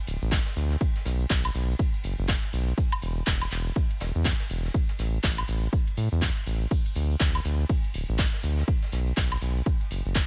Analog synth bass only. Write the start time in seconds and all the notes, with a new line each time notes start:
0.07 D1
0.22 A1
0.56 D2
1.05 B1
1.30 B1
1.55 B1
2.04 F#1
2.19 F#1
2.53 B1
3.02 E1
3.27 E1
3.51 E1
4.01 E1
4.15 E2
4.50 E1
4.99 A1
5.24 A1
5.48 A1
5.97 A2
6.12 E2
6.46 A1
6.96 D2
7.20 D2
7.45 D2
7.94 D1
8.09 A1
8.43 D2
8.92 B1
9.17 B1
9.42 B1
9.91 F#1
10.05 F#1